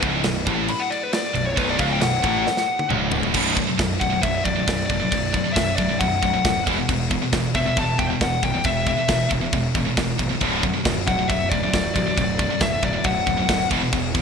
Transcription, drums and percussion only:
0.02 kick loud
0.02 crash medium
0.24 snare loud
0.24 crash medium
0.47 kick loud
0.47 crash medium
0.68 crash medium
0.92 crash medium
1.13 snare loud
1.13 crash medium
1.35 crash medium
1.57 kick loud
1.57 crash medium
1.79 kick loud
1.79 crash medium
2.01 snare loud
2.01 crash medium
2.24 kick loud
2.24 crash medium
2.47 snare medium
2.57 snare medium
2.79 high tom medium
2.90 mid tom loud
3.12 floor tom loud
3.23 floor tom loud
3.34 kick loud
3.34 crash loud
3.34 crash medium
3.57 kick medium
3.57 crash medium
3.79 kick loud
3.79 snare loud
3.79 crash medium
4.01 kick medium
4.01 crash medium
4.23 kick loud
4.23 crash medium
4.45 kick medium
4.45 crash medium
4.68 kick loud
4.68 snare loud
4.68 crash medium
4.90 kick medium
4.90 crash medium
5.12 kick loud
5.12 crash medium
5.34 kick medium
5.34 crash medium
5.56 kick loud
5.56 snare loud
5.56 crash loud
5.78 kick medium
5.78 crash medium
6.01 kick loud
6.01 crash medium
6.23 kick medium
6.23 crash medium
6.45 kick loud
6.45 snare loud
6.45 crash medium
6.67 kick medium
6.67 crash medium
6.89 kick loud
6.89 crash medium
7.11 kick medium
7.11 crash medium
7.32 kick loud
7.32 snare loud
7.32 crash medium
7.54 kick medium
7.54 crash medium
7.77 kick loud
7.77 crash medium
7.99 kick medium
7.99 crash medium
8.21 kick loud
8.21 snare loud
8.21 crash medium
8.43 kick medium
8.43 crash medium
8.64 kick loud
8.64 crash medium
8.86 kick medium
8.86 crash medium
9.08 kick loud
9.08 snare loud
9.08 crash loud
9.30 kick medium
9.30 crash medium
9.53 kick loud
9.53 crash medium
9.75 kick medium
9.75 crash medium
9.97 kick loud
9.97 snare loud
9.97 crash medium
10.19 kick loud
10.19 crash medium
10.41 kick loud
10.41 crash medium
10.63 kick loud
10.63 crash medium
10.85 kick loud
10.85 snare loud
10.85 crash medium
11.08 kick medium
11.08 crash medium
11.30 kick loud
11.30 crash medium
11.51 kick medium
11.51 crash medium
11.73 kick loud
11.73 snare loud
11.73 crash medium
11.96 kick medium
11.96 crash medium
12.18 kick loud
12.18 crash medium
12.39 kick medium
12.39 crash medium
12.60 kick loud
12.60 snare loud
12.60 crash medium
12.82 kick medium
12.82 crash medium
13.04 kick loud
13.04 crash medium
13.27 kick medium
13.27 crash medium
13.49 kick loud
13.49 snare loud
13.49 crash loud
13.71 kick medium
13.71 crash medium
13.93 kick loud
13.93 crash medium
14.15 kick medium
14.15 crash medium

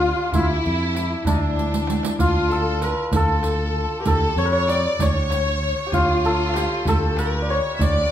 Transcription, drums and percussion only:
0.32 riq medium
0.32 tombak dum medium
0.63 riq soft
0.63 tombak ka soft
0.95 riq medium
0.95 tombak tek medium
1.25 riq medium
1.25 tombak dum medium
1.56 riq medium
1.56 tombak tek medium
1.72 riq medium
1.72 tombak ka medium
1.87 riq medium
1.87 tombak tek medium
2.03 riq medium
2.03 tombak ka medium
2.19 riq medium
2.19 tombak dum medium
2.51 riq soft
2.82 riq soft
2.82 tombak tek medium
3.13 riq medium
3.13 tombak dum loud
3.43 riq soft
3.43 tombak tek medium
4.05 riq medium
4.05 tombak dum loud
4.37 riq soft
4.37 tombak ka soft
4.69 riq soft
4.69 tombak tek medium
5.00 riq medium
5.00 tombak dum loud
5.30 riq soft
5.30 tombak tek medium
5.92 riq soft
5.92 tombak dum medium
6.24 riq soft
6.24 tombak ka soft
6.54 riq medium
6.54 tombak tek medium
6.86 riq medium
6.86 tombak dum loud
7.17 riq medium
7.17 tombak tek medium
7.80 riq medium
7.80 tombak dum medium

